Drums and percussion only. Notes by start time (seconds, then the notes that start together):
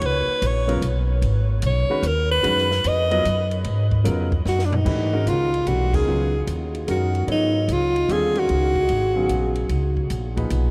0.01 ride
0.42 hi-hat pedal, ride
0.69 ride
0.82 hi-hat pedal, ride
1.22 ride
1.62 hi-hat pedal, ride
2.03 hi-hat pedal, ride
2.44 ride
2.58 snare
2.71 snare
2.84 hi-hat pedal, ride
3.11 ride
3.25 hi-hat pedal, ride
3.51 ride
3.64 ride
3.91 kick
4.05 hi-hat pedal, ride
4.32 kick
4.46 snare
4.59 snare
4.72 floor tom
4.86 kick, crash
5.27 hi-hat pedal, ride
5.54 ride
5.67 hi-hat pedal, ride
5.94 kick, crash
6.47 hi-hat pedal, ride
6.75 ride
6.88 hi-hat pedal, ride
7.15 ride
7.28 ride
7.68 hi-hat pedal, ride
7.96 ride
8.09 hi-hat pedal, ride
8.35 ride
8.49 ride
8.76 kick
8.89 ride
9.29 hi-hat pedal, ride
9.55 ride
9.69 ride
9.97 kick
10.10 hi-hat pedal, ride
10.37 kick, ride
10.50 hi-hat pedal, ride